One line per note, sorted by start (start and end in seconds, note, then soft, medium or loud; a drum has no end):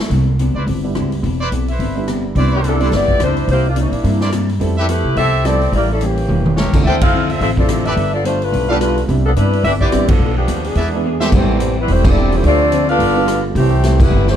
0.10 0.52 C2 medium
0.10 0.29 C3 soft
0.10 0.29 E3 soft
0.10 0.30 B3 soft
0.10 0.30 D4 medium
0.10 kick soft
0.10 open hi-hat soft
0.39 0.57 C3 medium
0.39 0.58 E3 medium
0.39 0.58 B3 medium
0.39 0.58 D4 medium
0.39 closed hi-hat soft
0.55 0.66 C#2 medium
0.55 0.63 E4 medium
0.55 0.63 B4 medium
0.55 0.63 C5 medium
0.55 0.63 D5 medium
0.66 0.93 G1 medium
0.66 0.85 C3 medium
0.66 0.85 E3 medium
0.66 0.86 B3 medium
0.66 0.86 D4 medium
0.66 kick soft
0.66 open hi-hat soft
0.84 1.21 G3 medium
0.84 1.21 B3 soft
0.84 1.21 D4 soft
0.84 1.22 E4 medium
0.95 1.21 C#2 medium
0.95 1.13 C3 medium
0.95 1.13 E3 medium
0.95 1.14 B3 medium
0.95 1.14 D4 medium
0.95 cross-stick medium
0.95 closed hi-hat soft
1.12 open hi-hat soft
1.23 1.49 E1 medium
1.23 1.41 C3 soft
1.23 1.41 E3 soft
1.23 1.42 B3 soft
1.23 1.43 D4 soft
1.23 kick soft
1.23 open hi-hat soft
1.40 1.48 E4 medium
1.40 1.48 B4 medium
1.40 1.48 C5 medium
1.40 1.48 D5 medium
1.51 1.78 B1 medium
1.51 1.69 C3 medium
1.51 1.70 E3 medium
1.51 1.70 B3 medium
1.51 1.70 D4 medium
1.51 closed hi-hat soft
1.68 2.06 E4 medium
1.68 2.06 B4 medium
1.68 2.06 C5 medium
1.68 2.06 E5 medium
1.68 open hi-hat soft
1.79 2.33 G1 medium
1.79 1.97 C3 medium
1.79 1.98 E3 medium
1.79 1.98 B3 medium
1.79 1.99 D4 medium
1.79 kick soft
1.79 open hi-hat soft
1.95 2.33 G3 medium
1.95 2.33 B3 medium
1.95 2.34 D4 medium
1.95 2.34 E4 medium
2.08 2.26 C3 medium
2.08 2.26 E3 medium
2.08 2.26 B3 medium
2.08 2.27 D4 medium
2.08 cross-stick medium
2.08 closed hi-hat soft
2.35 2.89 C2 medium
2.35 2.53 C3 soft
2.35 2.54 E3 medium
2.35 2.51 G3 soft
2.35 2.51 B3 soft
2.35 2.55 B3 soft
2.35 2.51 C4 soft
2.35 2.51 D4 soft
2.35 2.55 D4 soft
2.35 2.77 E4 medium
2.35 2.51 E4 medium
2.35 2.77 B4 medium
2.35 2.77 C5 medium
2.35 2.77 D5 medium
2.35 kick soft
2.35 open hi-hat soft
2.55 2.60 E3 medium
2.55 2.60 B3 medium
2.55 2.60 D4 medium
2.55 2.60 G4 medium
2.63 2.82 C3 medium
2.63 2.82 E3 medium
2.63 2.92 G3 medium
2.63 2.83 B3 medium
2.63 2.83 D4 medium
2.63 2.92 D4 medium
2.63 2.92 E4 medium
2.63 2.92 A4 medium
2.63 closed hi-hat soft
2.80 2.91 G3 medium
2.80 2.91 B3 medium
2.80 2.91 C4 soft
2.80 2.91 D4 medium
2.80 2.88 E4 medium
2.80 2.91 E4 medium
2.80 2.88 B4 medium
2.80 2.88 C5 medium
2.80 2.88 D5 medium
2.80 open hi-hat soft
2.91 3.18 G1 medium
2.91 3.10 C3 soft
2.91 3.10 E3 soft
2.91 3.11 B3 medium
2.91 3.21 B3 medium
2.91 3.11 D4 soft
2.91 3.21 E4 medium
2.91 3.21 G4 medium
2.91 3.21 D5 loud
2.91 kick soft
2.91 snare soft
2.91 open hi-hat soft
3.08 kick medium
3.19 3.46 C#2 medium
3.19 3.38 C3 medium
3.19 3.39 E3 medium
3.19 3.39 B3 medium
3.19 3.39 D4 medium
3.19 cross-stick medium
3.19 closed hi-hat soft
3.24 3.48 G3 medium
3.24 3.48 D4 medium
3.24 3.49 E4 medium
3.24 3.48 C5 loud
3.37 open hi-hat soft
3.47 3.89 C2 medium
3.47 3.66 C3 soft
3.47 3.66 E3 soft
3.47 3.67 A#3 soft
3.47 3.67 D4 soft
3.47 kick soft
3.47 open hi-hat soft
3.51 3.66 A#3 medium
3.51 3.66 E4 medium
3.51 3.66 G4 medium
3.51 3.65 C5 loud
3.69 3.78 G3 medium
3.69 3.78 A#3 medium
3.69 3.78 D4 medium
3.69 3.78 F4 medium
3.75 3.93 C3 medium
3.75 3.94 E3 medium
3.75 3.94 A#3 medium
3.75 3.95 D4 medium
3.75 closed hi-hat medium
3.80 4.30 G3 medium
3.80 4.30 A#3 medium
3.80 4.30 D4 medium
3.80 4.30 E4 medium
3.91 4.03 A#1 medium
3.91 open hi-hat soft
4.03 4.57 G2 medium
4.03 4.22 C3 soft
4.03 4.23 E3 soft
4.03 4.45 G3 soft
4.03 4.45 A#3 soft
4.03 4.23 A#3 soft
4.03 4.45 C4 soft
4.03 4.46 D4 soft
4.03 4.23 D4 medium
4.03 4.46 E4 medium
4.03 kick soft
4.03 open hi-hat soft
4.21 4.29 E4 medium
4.21 4.29 A#4 medium
4.21 4.29 C5 medium
4.21 4.29 D5 medium
4.21 snare soft
4.32 4.50 C3 medium
4.32 4.51 E3 medium
4.32 4.51 A#3 medium
4.32 4.51 D4 medium
4.32 cross-stick medium
4.32 closed hi-hat medium
4.49 open hi-hat soft
4.60 5.02 F2 medium
4.60 4.78 F3 medium
4.60 4.75 G3 medium
4.60 4.75 A3 medium
4.60 4.75 B3 medium
4.60 4.79 B3 soft
4.60 4.76 C4 medium
4.60 4.76 E4 medium
4.60 4.79 E4 medium
4.60 4.80 A4 medium
4.60 kick soft
4.60 open hi-hat soft
4.77 4.89 G3 medium
4.77 4.89 C4 medium
4.77 4.87 E4 medium
4.77 4.85 G4 medium
4.77 4.85 A4 medium
4.77 4.89 A4 medium
4.77 4.85 B4 medium
4.77 4.85 E5 loud
4.88 5.06 F3 medium
4.88 5.17 A3 medium
4.88 5.07 B3 medium
4.88 5.17 E4 medium
4.88 5.07 E4 medium
4.88 5.17 G4 medium
4.88 5.07 A4 medium
4.88 5.17 B4 medium
4.88 closed hi-hat medium
5.05 5.15 C3 medium
5.16 5.69 C2 medium
5.16 5.34 F3 soft
5.16 5.35 B3 medium
5.16 5.43 C4 medium
5.16 5.35 E4 medium
5.16 5.43 G4 medium
5.16 5.43 A4 loud
5.16 5.36 A4 medium
5.16 5.43 E5 loud
5.16 kick soft
5.16 open hi-hat soft
5.44 5.62 F3 medium
5.44 5.60 G3 medium
5.44 5.60 A3 medium
5.44 5.62 B3 medium
5.44 5.60 B3 medium
5.44 5.73 C4 medium
5.44 5.60 C4 medium
5.44 5.63 E4 medium
5.44 5.61 E4 medium
5.44 5.73 G4 medium
5.44 5.63 A4 medium
5.44 5.73 A4 medium
5.44 5.73 D5 loud
5.44 cross-stick medium
5.44 closed hi-hat soft
5.61 open hi-hat soft
5.71 6.26 A1 medium
5.71 5.90 A2 soft
5.71 5.90 G3 soft
5.71 5.91 A#3 soft
5.71 5.91 C#4 medium
5.71 kick soft
5.71 open hi-hat soft
5.75 5.90 A#3 medium
5.75 5.89 E4 medium
5.75 5.89 G4 medium
5.75 5.89 D5 medium
5.92 6.02 G3 medium
5.92 6.02 C#4 medium
5.92 6.02 E4 medium
5.92 6.02 A4 medium
6.00 6.18 A2 medium
6.00 6.58 E3 medium
6.00 6.19 G3 medium
6.00 6.19 A#3 medium
6.00 6.19 C#4 medium
6.00 6.58 C#4 medium
6.00 6.58 G4 medium
6.00 closed hi-hat soft
6.04 6.59 A#3 medium
6.17 open hi-hat soft
6.28 6.63 E1 medium
6.28 6.46 A2 soft
6.28 6.47 G3 medium
6.28 6.48 A#3 medium
6.28 6.48 C#4 soft
6.28 mid tom soft
6.46 mid tom medium
6.57 6.75 A2 medium
6.57 6.75 G3 medium
6.57 6.75 A#3 medium
6.57 6.76 C#4 medium
6.57 6.85 G4 medium
6.57 6.85 A4 medium
6.57 6.85 A#4 medium
6.57 6.85 C#5 medium
6.57 snare medium
6.66 6.74 A#1 medium
6.73 6.83 C#2 medium
6.73 6.84 F3 medium
6.73 6.84 A3 soft
6.73 6.84 C4 soft
6.73 6.85 D4 medium
6.73 6.85 E4 medium
6.73 kick medium
6.73 crash medium
6.84 7.38 D2 medium
6.84 7.02 D3 soft
6.84 7.03 F3 soft
6.84 7.04 C4 soft
6.84 7.04 E4 soft
6.84 7.01 E4 medium
6.84 6.96 F4 medium
6.84 7.01 A4 medium
6.84 6.96 C5 medium
6.84 7.02 C5 medium
6.84 6.96 D5 medium
6.84 6.96 E5 medium
6.84 7.02 G5 loud
6.84 kick soft
7.01 7.28 C4 medium
7.01 7.28 E4 medium
7.01 7.28 A4 medium
7.01 7.28 F5 loud
7.01 kick medium
7.01 ride medium
7.12 7.30 D3 soft
7.12 7.31 F3 medium
7.12 7.31 C4 medium
7.12 7.32 E4 medium
7.30 7.41 C4 medium
7.30 7.41 F4 medium
7.30 7.41 A4 medium
7.30 7.41 E5 medium
7.30 open hi-hat soft
7.39 7.94 A1 medium
7.39 7.58 D3 soft
7.39 7.58 F3 soft
7.39 7.59 C4 medium
7.39 7.49 C4 medium
7.39 7.59 E4 medium
7.39 7.49 F4 medium
7.39 7.49 A4 medium
7.39 7.49 E5 loud
7.39 kick soft
7.39 open hi-hat soft
7.57 7.95 F3 medium
7.57 7.95 A3 medium
7.57 7.95 C4 medium
7.57 7.84 C4 medium
7.57 7.95 D4 medium
7.57 7.95 E4 medium
7.57 7.84 F4 medium
7.57 7.84 A4 medium
7.57 7.84 D5 medium
7.57 kick medium
7.69 7.87 D3 medium
7.69 7.87 F3 medium
7.69 7.87 C4 medium
7.69 7.88 E4 medium
7.69 cross-stick medium
7.69 closed hi-hat medium
7.85 8.13 D4 medium
7.85 7.93 G4 medium
7.85 7.93 A4 medium
7.85 8.13 A4 medium
7.85 7.93 B4 medium
7.85 8.14 B4 medium
7.85 7.93 D5 loud
7.85 8.14 E5 medium
7.85 open hi-hat soft
7.95 8.50 G1 medium
7.95 8.14 G3 soft
7.95 8.15 B3 soft
7.95 8.15 F4 soft
7.95 8.16 A4 soft
7.95 kick soft
7.95 open hi-hat soft
8.14 8.24 B3 medium
8.14 8.24 F4 medium
8.14 8.24 A4 medium
8.14 8.24 D5 medium
8.24 8.42 G3 medium
8.24 8.41 A3 medium
8.24 8.43 B3 medium
8.24 8.41 D4 medium
8.24 8.43 F4 medium
8.24 8.41 F4 medium
8.24 8.43 A4 medium
8.24 8.41 C5 medium
8.24 closed hi-hat medium
8.42 8.70 A3 medium
8.42 8.70 D4 medium
8.42 8.70 F4 medium
8.42 8.71 B4 loud
8.42 open hi-hat soft
8.52 9.06 B1 medium
8.52 8.70 G3 soft
8.52 8.71 B3 soft
8.52 8.71 F4 medium
8.52 8.72 A4 medium
8.52 kick soft
8.52 open hi-hat soft
8.69 9.06 G3 medium
8.69 9.06 A3 medium
8.69 9.06 B3 medium
8.69 8.76 B3 medium
8.69 9.06 D4 medium
8.69 9.07 F4 medium
8.69 8.76 F4 medium
8.69 8.77 G4 medium
8.69 8.77 A4 medium
8.69 8.76 A4 medium
8.69 8.77 B4 medium
8.69 8.75 D5 medium
8.69 8.77 F5 medium
8.80 8.98 G3 medium
8.80 9.02 A3 medium
8.80 8.98 B3 medium
8.80 9.02 D4 medium
8.80 9.02 F4 medium
8.80 8.99 F4 medium
8.80 8.99 A4 medium
8.80 9.02 B4 medium
8.80 cross-stick medium
8.80 closed hi-hat soft
8.97 open hi-hat soft
9.08 9.34 C2 medium
9.08 9.26 C3 soft
9.08 9.27 E3 soft
9.08 9.23 G3 medium
9.08 9.24 B3 soft
9.08 9.27 B3 soft
9.08 9.24 C4 medium
9.08 9.24 D4 medium
9.08 9.28 D4 soft
9.08 9.24 E4 medium
9.08 kick soft
9.08 open hi-hat soft
9.25 9.31 F3 medium
9.25 9.31 B3 medium
9.25 9.31 D4 medium
9.25 9.31 A4 medium
9.36 9.63 G2 medium
9.36 9.54 C3 medium
9.36 9.55 E3 medium
9.36 9.63 G3 medium
9.36 9.55 B3 medium
9.36 9.62 D4 medium
9.36 9.55 D4 medium
9.36 9.63 E4 medium
9.36 9.63 B4 medium
9.36 closed hi-hat medium
9.53 open hi-hat soft
9.64 9.90 G1 medium
9.64 9.82 C3 soft
9.64 9.83 E3 medium
9.64 9.83 B3 soft
9.64 9.73 D4 medium
9.64 9.84 D4 medium
9.64 9.72 G4 medium
9.64 9.72 B4 medium
9.64 9.72 E5 loud
9.64 kick soft
9.64 open hi-hat soft
9.81 10.07 B3 medium
9.81 10.07 E4 medium
9.81 10.07 G4 medium
9.81 9.89 B4 medium
9.81 9.88 C5 medium
9.81 9.89 D5 medium
9.81 10.07 D5 medium
9.81 9.89 E5 medium
9.81 kick soft
9.92 10.18 A1 medium
9.92 10.10 C3 medium
9.92 10.10 E3 medium
9.92 10.07 G3 medium
9.92 10.07 B3 medium
9.92 10.11 B3 medium
9.92 10.07 C4 medium
9.92 10.08 D4 medium
9.92 10.11 D4 medium
9.92 10.08 E4 medium
9.92 cross-stick medium
9.92 closed hi-hat soft
10.08 10.36 F3 medium
10.08 10.36 B3 medium
10.08 10.36 D4 medium
10.08 10.37 A4 medium
10.08 kick medium
10.08 ride medium
10.19 10.46 B1 medium
10.19 10.37 B2 soft
10.19 10.38 F3 soft
10.19 10.39 A3 soft
10.19 10.39 D4 soft
10.37 10.63 F3 medium
10.37 10.63 B3 medium
10.37 10.63 D4 medium
10.37 10.63 G4 medium
10.48 10.74 D#2 medium
10.48 10.66 B2 medium
10.48 10.66 F3 medium
10.48 10.66 A3 medium
10.48 10.67 D4 medium
10.48 closed hi-hat medium
10.64 11.21 B2 medium
10.64 11.21 D3 medium
10.64 11.21 E3 medium
10.64 11.21 G#3 medium
10.64 11.21 B3 medium
10.64 11.21 D4 medium
10.64 11.21 G#4 medium
10.64 open hi-hat soft
10.75 11.29 E2 medium
10.75 10.94 E3 soft
10.75 10.95 B3 medium
10.75 10.95 D4 soft
10.75 10.88 G#4 medium
10.75 10.88 B4 medium
10.75 10.88 D5 medium
10.75 10.88 E5 medium
10.75 kick soft
10.75 open hi-hat soft
10.80 10.96 G#4 soft
10.93 11.19 E3 medium
10.93 11.20 G#3 medium
10.93 11.20 B3 medium
10.93 11.20 D4 medium
10.93 11.20 E4 medium
11.05 11.22 E3 medium
11.05 11.23 B3 medium
11.05 11.23 D4 medium
11.05 11.23 G#4 medium
11.20 11.58 G3 medium
11.20 11.58 A3 medium
11.20 11.58 B3 medium
11.20 11.58 C4 medium
11.20 11.28 G4 medium
11.20 11.58 G4 medium
11.20 11.28 A4 medium
11.20 11.28 C5 medium
11.20 11.28 E5 loud
11.20 snare medium
11.32 11.85 A1 medium
11.32 11.50 A2 soft
11.32 11.75 C3 medium
11.32 11.75 E3 medium
11.32 11.51 G3 soft
11.32 11.75 G3 medium
11.32 11.51 C4 soft
11.32 11.52 E4 soft
11.32 kick medium
11.32 crash medium
11.36 11.76 E3 medium
11.36 11.76 A3 medium
11.36 11.76 C4 medium
11.36 11.76 G4 medium
11.59 11.77 A2 medium
11.59 11.78 G3 medium
11.59 11.78 C4 medium
11.59 11.79 E4 medium
11.59 closed hi-hat soft
11.79 11.90 G3 medium
11.79 11.89 B3 medium
11.79 11.90 C4 medium
11.79 11.90 E4 medium
11.79 11.90 B4 medium
11.88 12.41 E1 medium
11.88 12.06 A2 medium
11.88 12.05 E3 medium
11.88 12.06 G3 medium
11.88 12.07 C4 soft
11.88 12.06 C4 medium
11.88 kick soft
11.88 open hi-hat soft
11.92 12.07 A3 medium
11.92 12.08 E4 medium
11.92 12.07 E4 medium
11.92 12.07 G4 medium
11.92 12.07 C5 loud
12.04 12.33 E3 medium
12.04 12.31 G3 medium
12.04 12.34 G3 medium
12.04 12.31 A3 medium
12.04 12.31 B3 medium
12.04 12.31 C4 medium
12.04 12.34 D4 medium
12.04 12.31 E4 medium
12.04 kick medium
12.04 crash medium
12.09 12.35 C4 medium
12.09 12.35 G4 medium
12.09 12.35 A4 medium
12.09 12.35 D5 loud
12.17 12.34 A2 medium
12.17 12.34 G3 medium
12.17 12.35 C4 medium
12.17 12.35 E4 medium
12.32 12.45 E3 medium
12.32 12.70 F3 medium
12.32 12.45 G3 medium
12.32 12.70 A3 medium
12.32 12.46 A3 medium
12.32 12.70 C4 medium
12.32 12.45 C4 medium
12.32 12.70 D4 medium
12.32 12.70 G4 medium
12.32 12.46 G4 medium
12.32 open hi-hat soft
12.36 12.46 E4 medium
12.36 12.46 C5 medium
12.44 12.97 D2 medium
12.44 12.62 D3 soft
12.44 12.86 F3 loud
12.44 12.62 A3 soft
12.44 12.86 A3 loud
12.44 12.63 C4 soft
12.44 12.87 C4 medium
12.44 12.86 D4 loud
12.44 12.63 F4 soft
12.44 12.87 F4 medium
12.44 12.87 A4 medium
12.44 12.87 D5 loud
12.44 kick soft
12.44 open hi-hat soft
12.72 12.90 D3 medium
12.72 12.90 A3 medium
12.72 12.91 C4 medium
12.72 12.91 F4 medium
12.72 closed hi-hat soft
12.89 13.41 B3 loud
12.89 13.41 D4 medium
12.89 13.41 F4 medium
12.89 13.41 A4 medium
12.89 13.41 B4 medium
12.89 13.41 F5 loud
12.89 open hi-hat soft
12.99 13.52 G1 medium
12.99 13.17 G3 medium
12.99 13.18 B3 soft
12.99 13.18 F4 medium
12.99 13.19 A4 medium
12.99 kick soft
12.99 open hi-hat medium
13.16 13.53 G3 medium
13.16 13.53 A3 soft
13.16 13.53 B3 medium
13.16 13.54 D4 soft
13.16 13.54 F4 medium
13.27 13.45 G3 medium
13.27 13.46 B3 medium
13.27 13.46 F4 medium
13.27 13.46 A4 medium
13.27 cross-stick medium
13.27 closed hi-hat medium
13.55 14.08 C2 medium
13.55 13.97 A2 medium
13.55 13.73 C3 soft
13.55 13.97 E3 medium
13.55 13.98 E3 medium
13.55 13.97 G3 medium
13.55 13.74 G3 soft
13.55 13.74 A3 soft
13.55 13.98 A3 medium
13.55 13.98 C4 medium
13.55 13.75 E4 soft
13.55 13.98 G4 loud
13.55 kick soft
13.55 open hi-hat medium
13.83 14.01 C3 medium
13.83 14.01 G3 medium
13.83 14.02 A3 medium
13.83 14.02 E4 medium
13.83 snare soft
13.83 closed hi-hat medium
14.00 14.28 E3 medium
14.00 14.28 G3 medium
14.00 14.28 A3 medium
14.00 14.28 B3 medium
14.00 14.29 E4 medium
14.00 14.28 G4 medium
14.00 14.29 B4 medium
14.00 kick medium
14.00 crash medium
14.10 14.36 G1 medium
14.10 14.28 C3 soft
14.10 14.29 G3 medium
14.10 14.30 A3 medium
14.10 14.30 E4 medium
14.28 14.36 G3 medium
14.28 14.36 A3 medium
14.28 14.36 C4 medium
14.28 14.36 E4 medium
14.28 14.36 G4 medium
14.28 14.36 C5 medium
14.28 snare soft